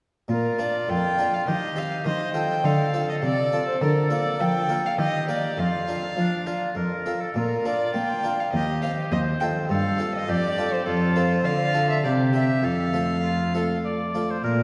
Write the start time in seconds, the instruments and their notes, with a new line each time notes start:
0.28 harpsichord A#2, cello A#2, oboe F4, violin A#4
0.59 harpsichord D4 F4 A#4, violin D5
0.88 harpsichord F2, cello F2, violin G5
1.18 harpsichord D4 F4 A#4
1.34 violin F5
1.47 harpsichord D#3, cello D#3, oboe G4, violin D#5
1.76 harpsichord C4 G4 C5, violin F5
2.05 harpsichord D#3, cello D#3, oboe C5, violin D#5
2.34 harpsichord C4 F4 A4, violin G5
2.64 harpsichord D3, cello D3, oboe A4, violin F5
2.93 harpsichord C4 F4 A4
3.09 violin D#5
3.22 harpsichord C3, cello C3, violin D5
3.52 harpsichord C4 F4 A4
3.68 violin C5
3.81 cello D3, harpsichord D3, violin A#4
4.10 harpsichord A#3 F4 A#4, violin D5
4.40 cello F3, harpsichord F3, violin G5
4.69 harpsichord A#3 F4 A#4
4.86 violin F5
4.98 cello D#3, harpsichord D#3, oboe G4, violin D#5
5.28 harpsichord A#3 G4 A#4, violin D5
5.57 harpsichord F2, cello F2, oboe F4, violin F5
5.88 harpsichord D4 F4 A#4
6.16 cello F3, harpsichord F3, oboe D4
6.46 harpsichord D4 F4 A#4, oboe F4
6.75 harpsichord F2, cello F2, oboe A#4
7.06 harpsichord C4 F4 A4
7.21 oboe A4
7.34 harpsichord A#2, cello A#2, oboe F4, violin A#4
7.65 harpsichord D4 F4 A#4, violin D5
7.94 harpsichord A#3, cello A#3, violin G5
8.23 harpsichord D4 F4 A#4
8.40 violin F5
8.53 harpsichord D#2, cello D#2, oboe G4, violin D#5
8.82 harpsichord C4 G4 C5, violin F5
9.12 cello D#2, harpsichord D#2, oboe C5, violin D#5
9.40 harpsichord C4 F4 A4, violin G5
9.69 harpsichord G2, cello G2, oboe A4, violin F5
9.98 harpsichord C4 F4 A4
10.15 violin D#5
10.28 harpsichord F2, cello F2, oboe G4, violin D5
10.58 harpsichord C4 F4 A4
10.73 violin C5
10.86 harpsichord F2, cello F2, oboe F4, violin A4
11.16 harpsichord C4 F4 A4, violin C5
11.44 harpsichord D3, cello D3, oboe F4, violin F5
11.74 harpsichord D4 F4 A4
11.90 violin E5
12.04 harpsichord C3, cello C3, oboe G4, violin D5
12.33 harpsichord G4 C5, violin E5
12.63 harpsichord F2, cello F2, oboe A4, violin F5
12.93 harpsichord A3 F4 C5
13.24 oboe F4
13.54 harpsichord A3 F4 C5, oboe A4
13.85 oboe D5
14.14 harpsichord A3 F4 C5
14.31 oboe C5
14.44 cello A#2, harpsichord A#2, oboe A#4